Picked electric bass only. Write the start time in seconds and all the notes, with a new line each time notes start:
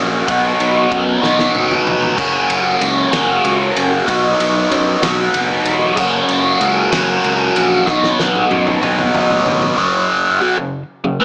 Already playing: A#1
0.29 B1
0.60 B1
0.92 F#2
1.23 B1
1.56 F#1
1.87 F1
2.18 F#1
2.50 F#1
2.81 C#2
3.13 F#1
3.44 C#2
3.77 F#1
4.08 B1
4.40 B1
4.70 F#2
5.02 B1
5.33 F#1
5.65 E1
5.98 F#1
6.29 F#1
6.61 C#2
6.93 F#1
7.25 C#2
7.57 A#1
7.88 B1
8.19 B1
8.51 F#2
8.83 B1
9.14 F#1
9.46 G#1